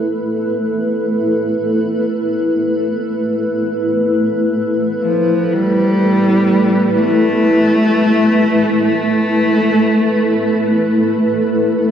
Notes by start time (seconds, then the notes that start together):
Already playing: A3 E4 A4 B4
5.03 F3
5.54 G3
6.97 A3
8.87 A3